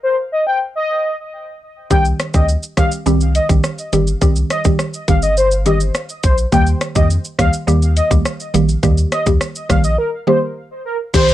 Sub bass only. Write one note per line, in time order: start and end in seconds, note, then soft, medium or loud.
1.91 2.13 C2 loud
2.34 2.57 D2 medium
2.77 2.89 C2 medium
3.06 3.40 C2 medium
3.49 3.61 A#1 medium
3.93 4.15 G1 medium
4.22 4.44 C2 loud
4.65 4.76 C2 medium
5.08 5.91 G1 loud
6.24 6.46 A#1 medium
6.52 6.75 D#2 loud
6.96 7.18 F2 medium
7.39 7.50 D#2 medium
7.68 8.01 D#2 medium
8.11 8.22 D2 medium
8.54 8.77 A#1 medium
8.83 9.05 D#2 loud
9.27 9.38 D#2 medium
9.70 9.97 A#1 medium
11.14 11.34 C2 loud